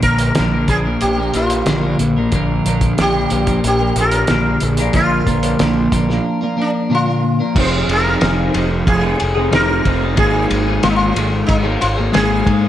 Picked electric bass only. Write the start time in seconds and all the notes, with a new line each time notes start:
0.03 A#1
0.39 A#1
0.68 A#1
1.03 A#1
1.35 A#1
1.67 A#1
2.00 A#1
2.32 A#1
2.66 A#1
2.99 A#1
3.32 A#1
3.64 A#1
3.96 A#1
4.30 A#1
4.62 A#1
4.94 A#1
5.27 A#1
5.61 A#1
5.92 A#1
7.55 F1
7.88 F1
8.22 F1
8.55 F1
8.87 F1
9.22 F1
9.53 F1
9.86 F1
10.18 G#1
10.51 G#1
10.84 G#1
11.15 G#1
11.49 G#1
11.82 G#1
12.15 G#1
12.46 G#2